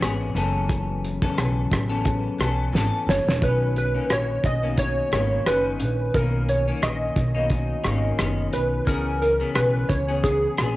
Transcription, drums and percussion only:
0, 0, Header, 1, 2, 480
1, 0, Start_track
1, 0, Key_signature, 5, "major"
1, 0, Tempo, 681818
1, 486, Time_signature, 4, 2, 24, 8
1, 7579, End_track
2, 0, Start_track
2, 0, Title_t, "Drums"
2, 17, Note_on_c, 9, 37, 86
2, 17, Note_on_c, 9, 42, 76
2, 87, Note_off_c, 9, 37, 0
2, 88, Note_off_c, 9, 42, 0
2, 254, Note_on_c, 9, 42, 48
2, 325, Note_off_c, 9, 42, 0
2, 489, Note_on_c, 9, 36, 107
2, 489, Note_on_c, 9, 42, 63
2, 559, Note_off_c, 9, 42, 0
2, 560, Note_off_c, 9, 36, 0
2, 736, Note_on_c, 9, 42, 41
2, 807, Note_off_c, 9, 42, 0
2, 860, Note_on_c, 9, 36, 78
2, 931, Note_off_c, 9, 36, 0
2, 971, Note_on_c, 9, 42, 66
2, 974, Note_on_c, 9, 37, 81
2, 1041, Note_off_c, 9, 42, 0
2, 1044, Note_off_c, 9, 37, 0
2, 1207, Note_on_c, 9, 36, 72
2, 1210, Note_on_c, 9, 42, 49
2, 1218, Note_on_c, 9, 37, 85
2, 1278, Note_off_c, 9, 36, 0
2, 1281, Note_off_c, 9, 42, 0
2, 1289, Note_off_c, 9, 37, 0
2, 1443, Note_on_c, 9, 42, 72
2, 1446, Note_on_c, 9, 36, 85
2, 1513, Note_off_c, 9, 42, 0
2, 1517, Note_off_c, 9, 36, 0
2, 1687, Note_on_c, 9, 42, 44
2, 1693, Note_on_c, 9, 37, 84
2, 1757, Note_off_c, 9, 42, 0
2, 1764, Note_off_c, 9, 37, 0
2, 1937, Note_on_c, 9, 38, 52
2, 2007, Note_off_c, 9, 38, 0
2, 2176, Note_on_c, 9, 38, 73
2, 2247, Note_off_c, 9, 38, 0
2, 2314, Note_on_c, 9, 38, 70
2, 2384, Note_off_c, 9, 38, 0
2, 2409, Note_on_c, 9, 36, 113
2, 2413, Note_on_c, 9, 42, 63
2, 2479, Note_off_c, 9, 36, 0
2, 2484, Note_off_c, 9, 42, 0
2, 2650, Note_on_c, 9, 42, 44
2, 2720, Note_off_c, 9, 42, 0
2, 2886, Note_on_c, 9, 42, 70
2, 2889, Note_on_c, 9, 37, 86
2, 2956, Note_off_c, 9, 42, 0
2, 2959, Note_off_c, 9, 37, 0
2, 3124, Note_on_c, 9, 36, 74
2, 3125, Note_on_c, 9, 42, 47
2, 3195, Note_off_c, 9, 36, 0
2, 3196, Note_off_c, 9, 42, 0
2, 3360, Note_on_c, 9, 42, 65
2, 3363, Note_on_c, 9, 36, 79
2, 3431, Note_off_c, 9, 42, 0
2, 3434, Note_off_c, 9, 36, 0
2, 3603, Note_on_c, 9, 42, 46
2, 3609, Note_on_c, 9, 37, 87
2, 3673, Note_off_c, 9, 42, 0
2, 3680, Note_off_c, 9, 37, 0
2, 3846, Note_on_c, 9, 37, 86
2, 3847, Note_on_c, 9, 42, 76
2, 3916, Note_off_c, 9, 37, 0
2, 3917, Note_off_c, 9, 42, 0
2, 4081, Note_on_c, 9, 42, 55
2, 4151, Note_off_c, 9, 42, 0
2, 4324, Note_on_c, 9, 42, 68
2, 4325, Note_on_c, 9, 36, 111
2, 4394, Note_off_c, 9, 42, 0
2, 4396, Note_off_c, 9, 36, 0
2, 4566, Note_on_c, 9, 42, 44
2, 4637, Note_off_c, 9, 42, 0
2, 4804, Note_on_c, 9, 42, 70
2, 4807, Note_on_c, 9, 37, 86
2, 4874, Note_off_c, 9, 42, 0
2, 4877, Note_off_c, 9, 37, 0
2, 5040, Note_on_c, 9, 42, 50
2, 5043, Note_on_c, 9, 36, 82
2, 5111, Note_off_c, 9, 42, 0
2, 5113, Note_off_c, 9, 36, 0
2, 5279, Note_on_c, 9, 42, 70
2, 5283, Note_on_c, 9, 36, 84
2, 5350, Note_off_c, 9, 42, 0
2, 5354, Note_off_c, 9, 36, 0
2, 5517, Note_on_c, 9, 42, 46
2, 5524, Note_on_c, 9, 37, 82
2, 5588, Note_off_c, 9, 42, 0
2, 5594, Note_off_c, 9, 37, 0
2, 5766, Note_on_c, 9, 37, 88
2, 5766, Note_on_c, 9, 42, 71
2, 5836, Note_off_c, 9, 37, 0
2, 5837, Note_off_c, 9, 42, 0
2, 6004, Note_on_c, 9, 42, 53
2, 6074, Note_off_c, 9, 42, 0
2, 6243, Note_on_c, 9, 42, 68
2, 6245, Note_on_c, 9, 36, 101
2, 6313, Note_off_c, 9, 42, 0
2, 6315, Note_off_c, 9, 36, 0
2, 6492, Note_on_c, 9, 42, 46
2, 6562, Note_off_c, 9, 42, 0
2, 6724, Note_on_c, 9, 42, 73
2, 6727, Note_on_c, 9, 37, 85
2, 6795, Note_off_c, 9, 42, 0
2, 6797, Note_off_c, 9, 37, 0
2, 6966, Note_on_c, 9, 36, 85
2, 6970, Note_on_c, 9, 42, 54
2, 7036, Note_off_c, 9, 36, 0
2, 7040, Note_off_c, 9, 42, 0
2, 7207, Note_on_c, 9, 36, 76
2, 7211, Note_on_c, 9, 42, 69
2, 7277, Note_off_c, 9, 36, 0
2, 7281, Note_off_c, 9, 42, 0
2, 7444, Note_on_c, 9, 42, 43
2, 7450, Note_on_c, 9, 37, 86
2, 7514, Note_off_c, 9, 42, 0
2, 7520, Note_off_c, 9, 37, 0
2, 7579, End_track
0, 0, End_of_file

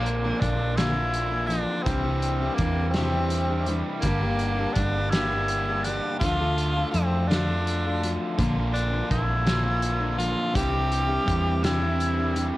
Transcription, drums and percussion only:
0, 0, Header, 1, 2, 480
1, 0, Start_track
1, 0, Tempo, 723764
1, 1242, Time_signature, 6, 3, 24, 8
1, 8340, End_track
2, 0, Start_track
2, 0, Title_t, "Drums"
2, 42, Note_on_c, 9, 42, 50
2, 108, Note_off_c, 9, 42, 0
2, 278, Note_on_c, 9, 36, 72
2, 282, Note_on_c, 9, 42, 56
2, 345, Note_off_c, 9, 36, 0
2, 349, Note_off_c, 9, 42, 0
2, 514, Note_on_c, 9, 42, 75
2, 518, Note_on_c, 9, 38, 98
2, 580, Note_off_c, 9, 42, 0
2, 585, Note_off_c, 9, 38, 0
2, 754, Note_on_c, 9, 42, 53
2, 820, Note_off_c, 9, 42, 0
2, 997, Note_on_c, 9, 42, 55
2, 1063, Note_off_c, 9, 42, 0
2, 1235, Note_on_c, 9, 42, 70
2, 1236, Note_on_c, 9, 36, 111
2, 1301, Note_off_c, 9, 42, 0
2, 1302, Note_off_c, 9, 36, 0
2, 1474, Note_on_c, 9, 42, 53
2, 1540, Note_off_c, 9, 42, 0
2, 1711, Note_on_c, 9, 42, 54
2, 1715, Note_on_c, 9, 36, 78
2, 1777, Note_off_c, 9, 42, 0
2, 1781, Note_off_c, 9, 36, 0
2, 1946, Note_on_c, 9, 42, 82
2, 1951, Note_on_c, 9, 38, 103
2, 2012, Note_off_c, 9, 42, 0
2, 2017, Note_off_c, 9, 38, 0
2, 2189, Note_on_c, 9, 42, 65
2, 2255, Note_off_c, 9, 42, 0
2, 2429, Note_on_c, 9, 42, 55
2, 2496, Note_off_c, 9, 42, 0
2, 2667, Note_on_c, 9, 42, 88
2, 2674, Note_on_c, 9, 36, 102
2, 2733, Note_off_c, 9, 42, 0
2, 2741, Note_off_c, 9, 36, 0
2, 2910, Note_on_c, 9, 42, 48
2, 2977, Note_off_c, 9, 42, 0
2, 3153, Note_on_c, 9, 42, 65
2, 3158, Note_on_c, 9, 36, 76
2, 3219, Note_off_c, 9, 42, 0
2, 3224, Note_off_c, 9, 36, 0
2, 3398, Note_on_c, 9, 42, 81
2, 3403, Note_on_c, 9, 38, 108
2, 3464, Note_off_c, 9, 42, 0
2, 3469, Note_off_c, 9, 38, 0
2, 3636, Note_on_c, 9, 42, 62
2, 3703, Note_off_c, 9, 42, 0
2, 3877, Note_on_c, 9, 42, 59
2, 3944, Note_off_c, 9, 42, 0
2, 4122, Note_on_c, 9, 36, 101
2, 4124, Note_on_c, 9, 42, 77
2, 4188, Note_off_c, 9, 36, 0
2, 4190, Note_off_c, 9, 42, 0
2, 4365, Note_on_c, 9, 42, 51
2, 4431, Note_off_c, 9, 42, 0
2, 4603, Note_on_c, 9, 42, 56
2, 4669, Note_off_c, 9, 42, 0
2, 4849, Note_on_c, 9, 42, 79
2, 4853, Note_on_c, 9, 38, 103
2, 4915, Note_off_c, 9, 42, 0
2, 4920, Note_off_c, 9, 38, 0
2, 5088, Note_on_c, 9, 42, 59
2, 5154, Note_off_c, 9, 42, 0
2, 5330, Note_on_c, 9, 42, 55
2, 5396, Note_off_c, 9, 42, 0
2, 5563, Note_on_c, 9, 36, 105
2, 5563, Note_on_c, 9, 42, 76
2, 5629, Note_off_c, 9, 36, 0
2, 5629, Note_off_c, 9, 42, 0
2, 5805, Note_on_c, 9, 42, 49
2, 5872, Note_off_c, 9, 42, 0
2, 6039, Note_on_c, 9, 36, 78
2, 6040, Note_on_c, 9, 42, 61
2, 6106, Note_off_c, 9, 36, 0
2, 6106, Note_off_c, 9, 42, 0
2, 6276, Note_on_c, 9, 42, 74
2, 6281, Note_on_c, 9, 38, 106
2, 6343, Note_off_c, 9, 42, 0
2, 6347, Note_off_c, 9, 38, 0
2, 6514, Note_on_c, 9, 42, 66
2, 6580, Note_off_c, 9, 42, 0
2, 6763, Note_on_c, 9, 42, 57
2, 6829, Note_off_c, 9, 42, 0
2, 6999, Note_on_c, 9, 36, 103
2, 7002, Note_on_c, 9, 42, 88
2, 7065, Note_off_c, 9, 36, 0
2, 7068, Note_off_c, 9, 42, 0
2, 7240, Note_on_c, 9, 42, 54
2, 7306, Note_off_c, 9, 42, 0
2, 7479, Note_on_c, 9, 36, 79
2, 7484, Note_on_c, 9, 42, 59
2, 7546, Note_off_c, 9, 36, 0
2, 7550, Note_off_c, 9, 42, 0
2, 7720, Note_on_c, 9, 42, 85
2, 7724, Note_on_c, 9, 38, 111
2, 7786, Note_off_c, 9, 42, 0
2, 7791, Note_off_c, 9, 38, 0
2, 7962, Note_on_c, 9, 42, 58
2, 8028, Note_off_c, 9, 42, 0
2, 8198, Note_on_c, 9, 42, 63
2, 8265, Note_off_c, 9, 42, 0
2, 8340, End_track
0, 0, End_of_file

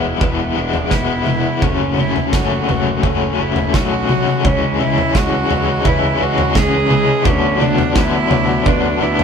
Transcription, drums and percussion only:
0, 0, Header, 1, 2, 480
1, 0, Start_track
1, 0, Key_signature, 3, "minor"
1, 0, Tempo, 705053
1, 1102, Time_signature, 4, 2, 24, 8
1, 6289, End_track
2, 0, Start_track
2, 0, Title_t, "Drums"
2, 144, Note_on_c, 9, 36, 107
2, 145, Note_on_c, 9, 43, 76
2, 212, Note_off_c, 9, 36, 0
2, 213, Note_off_c, 9, 43, 0
2, 500, Note_on_c, 9, 43, 69
2, 568, Note_off_c, 9, 43, 0
2, 618, Note_on_c, 9, 38, 66
2, 622, Note_on_c, 9, 36, 94
2, 686, Note_off_c, 9, 38, 0
2, 690, Note_off_c, 9, 36, 0
2, 859, Note_on_c, 9, 47, 78
2, 927, Note_off_c, 9, 47, 0
2, 1104, Note_on_c, 9, 36, 102
2, 1105, Note_on_c, 9, 43, 91
2, 1172, Note_off_c, 9, 36, 0
2, 1173, Note_off_c, 9, 43, 0
2, 1345, Note_on_c, 9, 47, 65
2, 1413, Note_off_c, 9, 47, 0
2, 1469, Note_on_c, 9, 43, 68
2, 1537, Note_off_c, 9, 43, 0
2, 1584, Note_on_c, 9, 38, 75
2, 1586, Note_on_c, 9, 36, 109
2, 1652, Note_off_c, 9, 38, 0
2, 1654, Note_off_c, 9, 36, 0
2, 1832, Note_on_c, 9, 43, 73
2, 1832, Note_on_c, 9, 47, 71
2, 1900, Note_off_c, 9, 43, 0
2, 1900, Note_off_c, 9, 47, 0
2, 2065, Note_on_c, 9, 36, 97
2, 2065, Note_on_c, 9, 43, 77
2, 2133, Note_off_c, 9, 36, 0
2, 2134, Note_off_c, 9, 43, 0
2, 2424, Note_on_c, 9, 43, 84
2, 2492, Note_off_c, 9, 43, 0
2, 2547, Note_on_c, 9, 36, 107
2, 2547, Note_on_c, 9, 38, 81
2, 2615, Note_off_c, 9, 36, 0
2, 2616, Note_off_c, 9, 38, 0
2, 2785, Note_on_c, 9, 47, 84
2, 2853, Note_off_c, 9, 47, 0
2, 2909, Note_on_c, 9, 47, 74
2, 2977, Note_off_c, 9, 47, 0
2, 3028, Note_on_c, 9, 36, 119
2, 3031, Note_on_c, 9, 43, 83
2, 3096, Note_off_c, 9, 36, 0
2, 3099, Note_off_c, 9, 43, 0
2, 3271, Note_on_c, 9, 47, 75
2, 3339, Note_off_c, 9, 47, 0
2, 3390, Note_on_c, 9, 43, 73
2, 3458, Note_off_c, 9, 43, 0
2, 3506, Note_on_c, 9, 36, 112
2, 3506, Note_on_c, 9, 38, 75
2, 3574, Note_off_c, 9, 36, 0
2, 3575, Note_off_c, 9, 38, 0
2, 3747, Note_on_c, 9, 43, 78
2, 3815, Note_off_c, 9, 43, 0
2, 3983, Note_on_c, 9, 43, 82
2, 3984, Note_on_c, 9, 36, 110
2, 4051, Note_off_c, 9, 43, 0
2, 4052, Note_off_c, 9, 36, 0
2, 4343, Note_on_c, 9, 43, 87
2, 4411, Note_off_c, 9, 43, 0
2, 4462, Note_on_c, 9, 36, 116
2, 4464, Note_on_c, 9, 38, 82
2, 4530, Note_off_c, 9, 36, 0
2, 4532, Note_off_c, 9, 38, 0
2, 4702, Note_on_c, 9, 47, 86
2, 4770, Note_off_c, 9, 47, 0
2, 4937, Note_on_c, 9, 43, 95
2, 4939, Note_on_c, 9, 36, 127
2, 5005, Note_off_c, 9, 43, 0
2, 5007, Note_off_c, 9, 36, 0
2, 5183, Note_on_c, 9, 47, 78
2, 5251, Note_off_c, 9, 47, 0
2, 5299, Note_on_c, 9, 43, 83
2, 5367, Note_off_c, 9, 43, 0
2, 5415, Note_on_c, 9, 38, 89
2, 5417, Note_on_c, 9, 36, 115
2, 5483, Note_off_c, 9, 38, 0
2, 5485, Note_off_c, 9, 36, 0
2, 5656, Note_on_c, 9, 43, 81
2, 5656, Note_on_c, 9, 47, 80
2, 5724, Note_off_c, 9, 43, 0
2, 5724, Note_off_c, 9, 47, 0
2, 5895, Note_on_c, 9, 43, 84
2, 5897, Note_on_c, 9, 36, 114
2, 5963, Note_off_c, 9, 43, 0
2, 5965, Note_off_c, 9, 36, 0
2, 6258, Note_on_c, 9, 43, 88
2, 6289, Note_off_c, 9, 43, 0
2, 6289, End_track
0, 0, End_of_file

